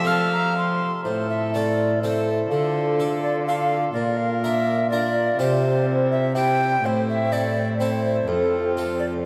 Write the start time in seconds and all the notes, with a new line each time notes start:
Already playing: F3 F4
0.04 A3 C4 A4 F5 A5
0.33 A#5
0.58 C6
1.05 A2 E4 A4 C5
1.29 E5
1.54 A3 C4 A4 D5
2.01 A3 C4 E4 A4 C5
2.49 D3 F4 A4
3.00 D4 A4
3.22 D5
3.46 D4 F4 A4 F5
3.93 A#2 F4 A#4 D5
4.17 F5
4.43 D4 A#4 E5
4.90 D4 F4 A#4 D5
5.39 C3 C4 F4 G4 C5
5.87 C4 E4
6.11 E5
6.35 C4 E4 G4 G5
6.83 A2 C4 E4 C5
7.09 E5
7.32 C4 E4 A4 D5
7.79 C4 E4 A4 C5
8.28 F2 C4 F4 A4
8.77 C4 F4 A4
8.99 D5